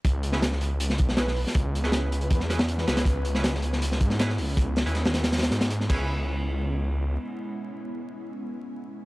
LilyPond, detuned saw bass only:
\new Staff \with { instrumentName = "Detuned saw bass" } { \clef bass \time 4/4 \key cis \minor \tempo 4 = 159 cis,2~ cis,8 b,,4~ b,,16 r16 | cis,2 e,4. cis,8 | cis,2~ cis,8 gis,4 cis,8~ | cis,8. dis,4.~ dis,16 gis,4 cis,8~ |
cis,2. r4 | r1 | }